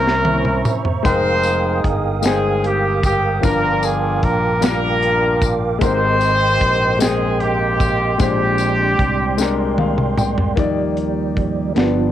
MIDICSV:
0, 0, Header, 1, 6, 480
1, 0, Start_track
1, 0, Key_signature, -3, "major"
1, 0, Tempo, 794176
1, 635, Time_signature, 6, 3, 24, 8
1, 7324, End_track
2, 0, Start_track
2, 0, Title_t, "Tonewheel organ"
2, 0, Program_c, 0, 16
2, 0, Note_on_c, 0, 72, 63
2, 0, Note_on_c, 0, 76, 61
2, 0, Note_on_c, 0, 82, 61
2, 0, Note_on_c, 0, 85, 68
2, 627, Note_off_c, 0, 72, 0
2, 628, Note_off_c, 0, 85, 0
2, 630, Note_off_c, 0, 76, 0
2, 631, Note_off_c, 0, 82, 0
2, 635, Note_on_c, 0, 70, 69
2, 635, Note_on_c, 0, 79, 59
2, 635, Note_on_c, 0, 87, 66
2, 636, Note_on_c, 0, 77, 59
2, 2059, Note_off_c, 0, 70, 0
2, 2059, Note_off_c, 0, 77, 0
2, 2060, Note_off_c, 0, 87, 0
2, 2066, Note_on_c, 0, 70, 66
2, 2067, Note_on_c, 0, 77, 61
2, 2067, Note_on_c, 0, 86, 77
2, 3490, Note_off_c, 0, 79, 0
2, 3495, Note_off_c, 0, 77, 0
2, 3495, Note_off_c, 0, 86, 0
2, 3509, Note_on_c, 0, 84, 80
2, 3512, Note_on_c, 0, 79, 66
2, 3515, Note_on_c, 0, 75, 64
2, 4924, Note_off_c, 0, 70, 0
2, 4939, Note_off_c, 0, 75, 0
2, 4959, Note_on_c, 0, 56, 67
2, 4960, Note_on_c, 0, 74, 60
2, 6365, Note_off_c, 0, 84, 0
2, 6367, Note_off_c, 0, 79, 0
2, 6380, Note_off_c, 0, 56, 0
2, 6381, Note_off_c, 0, 74, 0
2, 6386, Note_on_c, 0, 53, 52
2, 6393, Note_on_c, 0, 55, 46
2, 6396, Note_on_c, 0, 74, 53
2, 7084, Note_off_c, 0, 53, 0
2, 7088, Note_off_c, 0, 55, 0
2, 7089, Note_off_c, 0, 74, 0
2, 7101, Note_on_c, 0, 53, 52
2, 7106, Note_on_c, 0, 59, 47
2, 7106, Note_on_c, 0, 65, 81
2, 7110, Note_on_c, 0, 62, 58
2, 7312, Note_off_c, 0, 65, 0
2, 7324, Note_off_c, 0, 53, 0
2, 7324, Note_off_c, 0, 59, 0
2, 7324, Note_off_c, 0, 62, 0
2, 7324, End_track
3, 0, Start_track
3, 0, Title_t, "Horn section"
3, 0, Program_c, 1, 61
3, 0, Note_on_c, 1, 61, 71
3, 0, Note_on_c, 1, 64, 75
3, 0, Note_on_c, 1, 70, 88
3, 428, Note_off_c, 1, 70, 0
3, 532, Note_off_c, 1, 61, 0
3, 532, Note_off_c, 1, 64, 0
3, 635, Note_on_c, 1, 72, 106
3, 642, Note_on_c, 1, 63, 79
3, 644, Note_on_c, 1, 68, 73
3, 1091, Note_off_c, 1, 72, 0
3, 1334, Note_off_c, 1, 63, 0
3, 1335, Note_off_c, 1, 68, 0
3, 1365, Note_on_c, 1, 68, 81
3, 1583, Note_off_c, 1, 68, 0
3, 1610, Note_on_c, 1, 67, 80
3, 1839, Note_off_c, 1, 67, 0
3, 1846, Note_on_c, 1, 67, 84
3, 2064, Note_off_c, 1, 67, 0
3, 2083, Note_on_c, 1, 62, 70
3, 2085, Note_on_c, 1, 65, 72
3, 2089, Note_on_c, 1, 70, 105
3, 2322, Note_off_c, 1, 70, 0
3, 2322, Note_on_c, 1, 68, 89
3, 2558, Note_off_c, 1, 68, 0
3, 2565, Note_on_c, 1, 70, 91
3, 2774, Note_off_c, 1, 62, 0
3, 2775, Note_off_c, 1, 65, 0
3, 2800, Note_off_c, 1, 70, 0
3, 2805, Note_on_c, 1, 62, 76
3, 2806, Note_on_c, 1, 65, 72
3, 2807, Note_on_c, 1, 70, 105
3, 3316, Note_off_c, 1, 70, 0
3, 3495, Note_off_c, 1, 62, 0
3, 3495, Note_off_c, 1, 65, 0
3, 3522, Note_on_c, 1, 72, 127
3, 3523, Note_on_c, 1, 63, 82
3, 3525, Note_on_c, 1, 67, 84
3, 4213, Note_off_c, 1, 72, 0
3, 4214, Note_off_c, 1, 63, 0
3, 4214, Note_off_c, 1, 67, 0
3, 4239, Note_on_c, 1, 68, 92
3, 4474, Note_on_c, 1, 67, 95
3, 4476, Note_off_c, 1, 68, 0
3, 4478, Note_on_c, 1, 58, 76
3, 4478, Note_on_c, 1, 60, 75
3, 4931, Note_off_c, 1, 58, 0
3, 4931, Note_off_c, 1, 60, 0
3, 4953, Note_off_c, 1, 67, 0
3, 4962, Note_on_c, 1, 67, 88
3, 4966, Note_on_c, 1, 60, 65
3, 4966, Note_on_c, 1, 62, 59
3, 5892, Note_off_c, 1, 67, 0
3, 5894, Note_off_c, 1, 60, 0
3, 5894, Note_off_c, 1, 62, 0
3, 7324, End_track
4, 0, Start_track
4, 0, Title_t, "Grand piano"
4, 0, Program_c, 2, 0
4, 0, Note_on_c, 2, 48, 65
4, 0, Note_on_c, 2, 58, 66
4, 0, Note_on_c, 2, 61, 58
4, 0, Note_on_c, 2, 64, 64
4, 0, Note_on_c, 2, 72, 67
4, 21, Control_c, 2, 64, 127
4, 355, Note_off_c, 2, 58, 0
4, 359, Note_off_c, 2, 61, 0
4, 364, Note_off_c, 2, 64, 0
4, 367, Note_off_c, 2, 72, 0
4, 608, Note_off_c, 2, 48, 0
4, 622, Note_on_c, 2, 56, 70
4, 631, Note_on_c, 2, 63, 66
4, 639, Note_on_c, 2, 79, 69
4, 643, Control_c, 2, 64, 0
4, 647, Note_on_c, 2, 70, 82
4, 767, Control_c, 2, 64, 127
4, 1077, Note_off_c, 2, 56, 0
4, 1082, Note_off_c, 2, 63, 0
4, 1086, Note_off_c, 2, 79, 0
4, 1090, Note_off_c, 2, 70, 0
4, 1342, Note_on_c, 2, 56, 68
4, 1348, Note_on_c, 2, 63, 58
4, 1357, Note_on_c, 2, 79, 58
4, 1364, Note_on_c, 2, 72, 73
4, 1797, Note_off_c, 2, 56, 0
4, 1800, Note_off_c, 2, 63, 0
4, 1805, Note_off_c, 2, 79, 0
4, 1808, Note_off_c, 2, 72, 0
4, 2061, Note_on_c, 2, 53, 69
4, 2069, Note_on_c, 2, 62, 65
4, 2072, Note_on_c, 2, 43, 57
4, 2077, Note_on_c, 2, 65, 66
4, 2082, Control_c, 2, 64, 0
4, 2083, Note_on_c, 2, 70, 87
4, 2173, Control_c, 2, 64, 127
4, 2517, Note_off_c, 2, 53, 0
4, 2520, Note_off_c, 2, 62, 0
4, 2525, Note_off_c, 2, 65, 0
4, 2528, Note_off_c, 2, 70, 0
4, 2769, Note_off_c, 2, 43, 0
4, 2786, Note_on_c, 2, 55, 70
4, 2796, Note_on_c, 2, 62, 58
4, 2801, Note_on_c, 2, 65, 57
4, 2808, Note_on_c, 2, 70, 76
4, 3239, Note_off_c, 2, 55, 0
4, 3244, Note_off_c, 2, 62, 0
4, 3246, Note_off_c, 2, 65, 0
4, 3250, Note_off_c, 2, 70, 0
4, 3497, Note_on_c, 2, 56, 76
4, 3508, Note_on_c, 2, 58, 54
4, 3511, Note_on_c, 2, 44, 62
4, 3516, Note_on_c, 2, 67, 69
4, 3523, Control_c, 2, 64, 0
4, 3523, Note_on_c, 2, 70, 85
4, 3544, Note_on_c, 2, 60, 67
4, 3550, Note_off_c, 2, 58, 0
4, 3623, Control_c, 2, 64, 127
4, 3954, Note_off_c, 2, 56, 0
4, 3963, Note_off_c, 2, 67, 0
4, 3967, Note_off_c, 2, 70, 0
4, 3977, Note_off_c, 2, 60, 0
4, 4208, Note_off_c, 2, 44, 0
4, 4224, Note_on_c, 2, 56, 68
4, 4231, Note_on_c, 2, 60, 61
4, 4238, Note_on_c, 2, 79, 64
4, 4247, Note_on_c, 2, 72, 81
4, 4677, Note_off_c, 2, 56, 0
4, 4681, Note_off_c, 2, 60, 0
4, 4684, Note_off_c, 2, 79, 0
4, 4689, Note_off_c, 2, 72, 0
4, 4945, Note_on_c, 2, 56, 73
4, 4950, Note_on_c, 2, 62, 68
4, 4956, Note_on_c, 2, 46, 57
4, 4957, Note_on_c, 2, 67, 73
4, 4960, Control_c, 2, 64, 0
4, 4968, Note_on_c, 2, 72, 79
4, 5078, Control_c, 2, 64, 127
4, 5397, Note_off_c, 2, 56, 0
4, 5400, Note_off_c, 2, 62, 0
4, 5404, Note_off_c, 2, 67, 0
4, 5409, Note_off_c, 2, 72, 0
4, 5650, Note_off_c, 2, 46, 0
4, 5665, Note_on_c, 2, 56, 80
4, 5673, Note_on_c, 2, 62, 76
4, 5679, Note_on_c, 2, 67, 72
4, 5687, Note_on_c, 2, 70, 82
4, 5915, Note_on_c, 2, 77, 66
4, 6117, Note_off_c, 2, 56, 0
4, 6121, Note_off_c, 2, 62, 0
4, 6124, Note_off_c, 2, 67, 0
4, 6128, Note_off_c, 2, 70, 0
4, 6137, Note_off_c, 2, 77, 0
4, 6153, Note_on_c, 2, 79, 69
4, 6375, Note_off_c, 2, 79, 0
4, 6380, Note_on_c, 2, 58, 79
4, 6388, Note_on_c, 2, 63, 65
4, 6391, Note_on_c, 2, 51, 60
4, 6394, Note_on_c, 2, 67, 66
4, 6400, Control_c, 2, 64, 0
4, 6402, Note_on_c, 2, 74, 85
4, 6493, Control_c, 2, 64, 127
4, 6835, Note_off_c, 2, 58, 0
4, 6839, Note_off_c, 2, 63, 0
4, 6842, Note_off_c, 2, 67, 0
4, 6846, Note_off_c, 2, 74, 0
4, 7086, Note_off_c, 2, 51, 0
4, 7099, Note_on_c, 2, 58, 47
4, 7106, Note_on_c, 2, 65, 54
4, 7110, Note_on_c, 2, 43, 54
4, 7116, Note_on_c, 2, 67, 50
4, 7119, Control_c, 2, 64, 0
4, 7122, Note_on_c, 2, 74, 59
4, 7137, Note_on_c, 2, 59, 61
4, 7144, Note_off_c, 2, 58, 0
4, 7217, Control_c, 2, 64, 127
4, 7324, Note_off_c, 2, 43, 0
4, 7324, Note_off_c, 2, 59, 0
4, 7324, Note_off_c, 2, 65, 0
4, 7324, Note_off_c, 2, 67, 0
4, 7324, Note_off_c, 2, 74, 0
4, 7324, End_track
5, 0, Start_track
5, 0, Title_t, "Fingered electric bass"
5, 0, Program_c, 3, 33
5, 0, Note_on_c, 3, 36, 104
5, 372, Note_off_c, 3, 36, 0
5, 636, Note_on_c, 3, 29, 103
5, 1091, Note_off_c, 3, 29, 0
5, 1116, Note_on_c, 3, 31, 84
5, 2051, Note_off_c, 3, 31, 0
5, 2079, Note_on_c, 3, 31, 101
5, 2532, Note_off_c, 3, 31, 0
5, 2557, Note_on_c, 3, 34, 71
5, 3491, Note_off_c, 3, 34, 0
5, 3517, Note_on_c, 3, 32, 111
5, 3971, Note_off_c, 3, 32, 0
5, 3996, Note_on_c, 3, 34, 81
5, 4930, Note_off_c, 3, 34, 0
5, 4954, Note_on_c, 3, 34, 114
5, 5409, Note_off_c, 3, 34, 0
5, 5432, Note_on_c, 3, 36, 85
5, 6367, Note_off_c, 3, 36, 0
5, 6390, Note_on_c, 3, 39, 85
5, 7086, Note_off_c, 3, 39, 0
5, 7113, Note_on_c, 3, 31, 78
5, 7324, Note_off_c, 3, 31, 0
5, 7324, End_track
6, 0, Start_track
6, 0, Title_t, "Drums"
6, 46, Note_on_c, 9, 38, 57
6, 106, Note_off_c, 9, 38, 0
6, 151, Note_on_c, 9, 48, 85
6, 212, Note_off_c, 9, 48, 0
6, 271, Note_on_c, 9, 47, 76
6, 332, Note_off_c, 9, 47, 0
6, 393, Note_on_c, 9, 54, 59
6, 394, Note_on_c, 9, 45, 106
6, 454, Note_off_c, 9, 45, 0
6, 454, Note_off_c, 9, 54, 0
6, 513, Note_on_c, 9, 43, 83
6, 574, Note_off_c, 9, 43, 0
6, 634, Note_on_c, 9, 54, 50
6, 635, Note_on_c, 9, 36, 115
6, 635, Note_on_c, 9, 42, 95
6, 695, Note_off_c, 9, 36, 0
6, 695, Note_off_c, 9, 42, 0
6, 695, Note_off_c, 9, 54, 0
6, 867, Note_on_c, 9, 54, 57
6, 877, Note_on_c, 9, 42, 42
6, 927, Note_off_c, 9, 54, 0
6, 937, Note_off_c, 9, 42, 0
6, 1115, Note_on_c, 9, 36, 84
6, 1117, Note_on_c, 9, 42, 69
6, 1176, Note_off_c, 9, 36, 0
6, 1177, Note_off_c, 9, 42, 0
6, 1346, Note_on_c, 9, 54, 102
6, 1354, Note_on_c, 9, 42, 82
6, 1365, Note_on_c, 9, 38, 113
6, 1407, Note_off_c, 9, 54, 0
6, 1415, Note_off_c, 9, 42, 0
6, 1425, Note_off_c, 9, 38, 0
6, 1597, Note_on_c, 9, 42, 59
6, 1657, Note_off_c, 9, 42, 0
6, 1834, Note_on_c, 9, 36, 100
6, 1836, Note_on_c, 9, 42, 68
6, 1836, Note_on_c, 9, 54, 63
6, 1894, Note_off_c, 9, 36, 0
6, 1896, Note_off_c, 9, 42, 0
6, 1896, Note_off_c, 9, 54, 0
6, 2074, Note_on_c, 9, 54, 58
6, 2076, Note_on_c, 9, 36, 120
6, 2076, Note_on_c, 9, 42, 90
6, 2134, Note_off_c, 9, 54, 0
6, 2136, Note_off_c, 9, 36, 0
6, 2136, Note_off_c, 9, 42, 0
6, 2312, Note_on_c, 9, 54, 59
6, 2315, Note_on_c, 9, 42, 46
6, 2373, Note_off_c, 9, 54, 0
6, 2375, Note_off_c, 9, 42, 0
6, 2556, Note_on_c, 9, 36, 78
6, 2558, Note_on_c, 9, 42, 70
6, 2617, Note_off_c, 9, 36, 0
6, 2619, Note_off_c, 9, 42, 0
6, 2793, Note_on_c, 9, 42, 80
6, 2793, Note_on_c, 9, 54, 98
6, 2804, Note_on_c, 9, 38, 121
6, 2853, Note_off_c, 9, 42, 0
6, 2854, Note_off_c, 9, 54, 0
6, 2864, Note_off_c, 9, 38, 0
6, 3038, Note_on_c, 9, 42, 55
6, 3098, Note_off_c, 9, 42, 0
6, 3274, Note_on_c, 9, 36, 108
6, 3274, Note_on_c, 9, 42, 75
6, 3276, Note_on_c, 9, 54, 61
6, 3335, Note_off_c, 9, 36, 0
6, 3335, Note_off_c, 9, 42, 0
6, 3337, Note_off_c, 9, 54, 0
6, 3513, Note_on_c, 9, 42, 97
6, 3513, Note_on_c, 9, 54, 55
6, 3515, Note_on_c, 9, 36, 121
6, 3574, Note_off_c, 9, 42, 0
6, 3574, Note_off_c, 9, 54, 0
6, 3575, Note_off_c, 9, 36, 0
6, 3752, Note_on_c, 9, 54, 58
6, 3754, Note_on_c, 9, 42, 45
6, 3812, Note_off_c, 9, 54, 0
6, 3815, Note_off_c, 9, 42, 0
6, 3996, Note_on_c, 9, 36, 85
6, 3999, Note_on_c, 9, 42, 73
6, 4056, Note_off_c, 9, 36, 0
6, 4060, Note_off_c, 9, 42, 0
6, 4233, Note_on_c, 9, 42, 85
6, 4233, Note_on_c, 9, 54, 104
6, 4244, Note_on_c, 9, 38, 99
6, 4294, Note_off_c, 9, 42, 0
6, 4294, Note_off_c, 9, 54, 0
6, 4304, Note_off_c, 9, 38, 0
6, 4474, Note_on_c, 9, 42, 58
6, 4534, Note_off_c, 9, 42, 0
6, 4714, Note_on_c, 9, 36, 98
6, 4714, Note_on_c, 9, 42, 73
6, 4716, Note_on_c, 9, 54, 58
6, 4774, Note_off_c, 9, 36, 0
6, 4775, Note_off_c, 9, 42, 0
6, 4777, Note_off_c, 9, 54, 0
6, 4952, Note_on_c, 9, 54, 62
6, 4953, Note_on_c, 9, 42, 94
6, 4955, Note_on_c, 9, 36, 116
6, 5012, Note_off_c, 9, 54, 0
6, 5014, Note_off_c, 9, 42, 0
6, 5015, Note_off_c, 9, 36, 0
6, 5185, Note_on_c, 9, 54, 59
6, 5192, Note_on_c, 9, 42, 45
6, 5246, Note_off_c, 9, 54, 0
6, 5252, Note_off_c, 9, 42, 0
6, 5433, Note_on_c, 9, 36, 82
6, 5435, Note_on_c, 9, 42, 72
6, 5494, Note_off_c, 9, 36, 0
6, 5495, Note_off_c, 9, 42, 0
6, 5670, Note_on_c, 9, 54, 94
6, 5683, Note_on_c, 9, 38, 55
6, 5730, Note_off_c, 9, 54, 0
6, 5743, Note_off_c, 9, 38, 0
6, 5910, Note_on_c, 9, 48, 80
6, 5970, Note_off_c, 9, 48, 0
6, 6030, Note_on_c, 9, 47, 72
6, 6091, Note_off_c, 9, 47, 0
6, 6150, Note_on_c, 9, 45, 93
6, 6154, Note_on_c, 9, 54, 55
6, 6210, Note_off_c, 9, 45, 0
6, 6215, Note_off_c, 9, 54, 0
6, 6272, Note_on_c, 9, 43, 95
6, 6333, Note_off_c, 9, 43, 0
6, 6390, Note_on_c, 9, 36, 101
6, 6390, Note_on_c, 9, 42, 87
6, 6450, Note_off_c, 9, 42, 0
6, 6451, Note_off_c, 9, 36, 0
6, 6630, Note_on_c, 9, 42, 40
6, 6690, Note_off_c, 9, 42, 0
6, 6871, Note_on_c, 9, 36, 71
6, 6871, Note_on_c, 9, 42, 47
6, 6931, Note_off_c, 9, 36, 0
6, 6931, Note_off_c, 9, 42, 0
6, 7108, Note_on_c, 9, 42, 72
6, 7118, Note_on_c, 9, 38, 96
6, 7168, Note_off_c, 9, 42, 0
6, 7179, Note_off_c, 9, 38, 0
6, 7324, End_track
0, 0, End_of_file